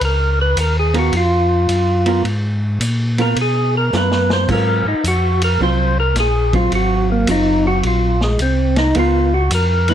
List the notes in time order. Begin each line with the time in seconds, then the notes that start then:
0.01 C#2, ride
0.05 A#4
0.41 B4
0.56 D#2 A#4, hi-hat pedal, ride
0.79 G#4
0.94 B3 F4 A#4, ride
0.99 F#4
1.12 F2, ride
1.17 F4
1.68 F#2, hi-hat pedal, ride
2.06 B3 F4 A#4, ride
2.24 G#2, ride
2.80 A#2, hi-hat pedal, ride
3.18 B3 F4 A#4, ride
3.36 B2, ride
3.41 G#4
3.77 A#4
3.93 F#2 B3 F4 A#4, snare, hi-hat pedal
3.97 B4
4.11 snare
4.30 C5, snare
4.48 G#2 F#3 C4 F4, kick, crash
4.52 A#4
4.85 G#2 D#4
5.04 F2, hi-hat pedal, ride
5.08 F#4
5.42 A#4, ride
5.59 C2 F#3 C4 F4 C5
6.00 A#4
6.15 A#1, snare, hi-hat pedal, ride
6.20 G#4
6.53 F#3 C4 F4, kick, ride
6.71 G#1, ride
6.75 F#4
7.12 A#3
7.27 F#1 F#3 C4 F4, hi-hat pedal, ride
7.31 D#4
7.67 F#4
7.83 A#1 F4, ride
8.21 G#3, snare
8.39 C2 C4, hi-hat pedal, ride
8.76 D#4, snare, ride
8.95 C#2 B3 F4 A#4, ride
8.99 F4
9.34 F#4
9.51 F2 A#4, hi-hat pedal, ride
9.88 E3 A#3 D#4 B4, ride